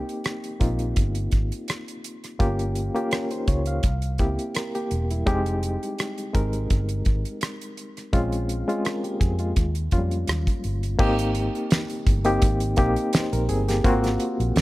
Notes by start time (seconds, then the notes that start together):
Already playing: A#3 C4 D#4 G4
0.09 closed hi-hat
0.24 cross-stick, closed hi-hat
0.44 closed hi-hat
0.60 A#1 A#3 C4 D#4 F4, kick, closed hi-hat
0.79 closed hi-hat
0.96 G1, kick, closed hi-hat
1.15 closed hi-hat
1.31 G#1, kick, closed hi-hat
1.52 closed hi-hat
1.68 cross-stick, closed hi-hat
1.88 closed hi-hat
2.04 closed hi-hat
2.24 cross-stick, closed hi-hat
2.39 G1 A#3 C#4 F4 G4, kick, closed hi-hat
2.59 closed hi-hat
2.75 closed hi-hat
2.94 A#3 C#4 F4 G4, closed hi-hat
3.11 C#4 A#4, cross-stick, closed hi-hat
3.31 D#4 C5, closed hi-hat
3.47 C#2 F4 C#5, kick, closed hi-hat
3.66 F5, closed hi-hat
3.83 C2, kick, closed hi-hat
4.02 closed hi-hat
4.18 C#2 A#3 C4 E4 G4, kick, closed hi-hat
4.39 closed hi-hat
4.55 A#4, cross-stick, closed hi-hat
4.75 A#3 G4, closed hi-hat
4.91 E1, closed hi-hat
5.10 G3 E4, closed hi-hat
5.26 F1 G#3 C4 D#4 G4, kick, closed hi-hat
5.46 closed hi-hat
5.63 closed hi-hat
5.83 closed hi-hat
5.99 cross-stick, closed hi-hat
6.18 closed hi-hat
6.34 G#1 G#3 C4 D#4 A#4, kick, closed hi-hat
6.53 closed hi-hat
6.70 G1, kick, closed hi-hat
6.89 closed hi-hat
7.05 G#1, kick, closed hi-hat
7.25 closed hi-hat
7.41 cross-stick, closed hi-hat
7.61 closed hi-hat
7.77 closed hi-hat
7.97 cross-stick, closed hi-hat
8.13 A#1 G#3 C4 C#4 F4, kick, closed hi-hat
8.32 closed hi-hat
8.49 closed hi-hat
8.68 G#3 C4 C#4 F4, closed hi-hat
8.84 C#4 A#4, cross-stick, closed hi-hat
9.04 A#3 G4, closed hi-hat
9.20 F2 C4 G#4, kick, closed hi-hat
9.39 G#3 F4, closed hi-hat
9.56 D#2, kick, closed hi-hat
9.75 closed hi-hat
9.91 F2 F#3 A#3 C#4 F4, kick, closed hi-hat
9.98 G3
10.11 closed hi-hat
10.27 D#2, cross-stick, closed hi-hat
10.47 kick, closed hi-hat
10.64 G1, closed hi-hat
10.83 closed hi-hat
10.99 G#1 A#3 C4 D#4 G4, kick, crash
11.19 closed hi-hat
11.35 closed hi-hat
11.55 closed hi-hat
11.71 snare, closed hi-hat
11.90 closed hi-hat
12.07 G1, kick, closed hi-hat
12.25 A#3 C4 D#4 G4, closed hi-hat
12.42 G#1, kick, closed hi-hat
12.60 closed hi-hat
12.76 A#1 A#3 C4 D#4 G4, kick, closed hi-hat
12.96 closed hi-hat
13.13 D#4 C5, snare, closed hi-hat
13.33 A#1 A#4, closed hi-hat
13.49 G1 C4 G#4, closed hi-hat
13.68 A#3 G4, snare, closed hi-hat
13.84 G#1 A#3 C4 F4 F#4, kick, closed hi-hat
14.04 snare, closed hi-hat
14.20 closed hi-hat
14.40 A#1, closed hi-hat
14.56 C2, snare, closed hi-hat